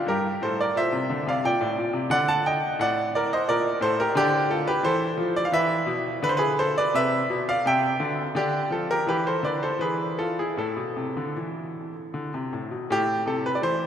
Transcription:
0.07 G2 G4 A#4
0.42 A2 A4 C5
0.61 A#4 D5
0.76 A#2 C5 E5
0.92 C3
1.10 D3
1.27 C3 D5 F5
1.44 A#2 D5 G5
1.61 A2
1.78 A#2
1.93 C3
2.10 D3 D5 F#5
2.28 F#5 A5
2.46 D#5 G5
2.79 A2 D5 F#5
3.15 A#4 D5
3.33 C5 D#5
3.48 A#2 A#4 D5
3.81 A2 A4 C5
4.00 G4 A#4
4.15 D3 D4 G4
4.51 F4 A4
4.68 G4 B4
4.83 E3 A4 C5
5.18 F3
5.36 D5
5.45 F5
5.52 E3 B4 E5
5.86 B2
6.22 D3 B4
6.29 C5
6.37 G#4 B4
6.59 A4 C5
6.78 B4 D5
6.94 C3 B4 E5
7.30 B2
7.49 D5 F5
7.65 C3 E5 G5
8.00 D3
8.35 D3 D4 G4
8.71 F3 F4 A4
8.91 G4 A#4
9.07 E3 G4 B4
9.27 A4 C5
9.43 D3 B4 D5
9.63 A4 C5
9.79 E3 G#4 B4
10.19 F4 A4
10.39 E4 G#4
10.57 A2 E4 A4
10.76 B2
10.96 C3
11.17 D3
11.36 E3
12.14 D3
12.34 C3
12.53 A2
12.71 B2
12.90 A2 A3 G4
13.26 C3 A4
13.46 B4
13.55 D5
13.62 E3 C5

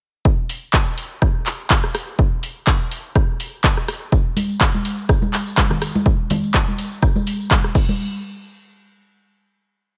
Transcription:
0.25 kick
0.49 open hi-hat
0.73 kick, clap
0.98 open hi-hat
1.22 kick, cross-stick
1.46 clap, open hi-hat
1.70 kick, clap
1.84 cross-stick
1.95 cross-stick, open hi-hat
2.19 kick
2.43 open hi-hat
2.67 kick, clap
2.91 open hi-hat
3.15 kick, cross-stick
3.40 open hi-hat
3.64 kick, clap
3.77 cross-stick
3.88 cross-stick, open hi-hat
4.12 kick, tambourine
4.36 open hi-hat, tambourine, high conga
4.49 tambourine
4.61 kick, clap, tambourine
4.74 high conga
4.85 open hi-hat, tambourine
4.98 tambourine
5.09 kick, cross-stick, tambourine
5.22 tambourine, high conga
5.33 clap, open hi-hat, tambourine
5.46 tambourine
5.57 kick, clap, tambourine, high conga
5.70 cross-stick, low conga
5.82 cross-stick, open hi-hat, tambourine
5.94 tambourine, high conga
6.06 kick, tambourine
6.30 open hi-hat, tambourine, high conga, low conga
6.44 tambourine
6.54 kick, clap, tambourine
6.68 high conga
6.78 open hi-hat, tambourine
6.92 tambourine
7.03 kick, cross-stick, tambourine
7.16 tambourine, high conga
7.26 open hi-hat, tambourine
7.40 tambourine
7.51 kick, clap, tambourine, high conga
7.64 cross-stick
7.75 kick, crash, tambourine
7.89 tambourine, high conga

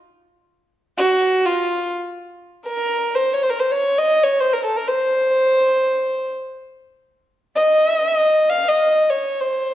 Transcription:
0.98 F#4
1.46 F4
2.67 A#4
3.15 C5
3.34 C#5
3.43 C5
3.50 A#4
3.60 C5
3.71 C#5
3.98 D#5
4.23 C#5
4.40 C5
4.53 A#4
4.65 A4
4.76 A#4
4.88 C5
7.56 D#5
8.50 F5
8.68 D#5
9.09 C#5
9.40 C5

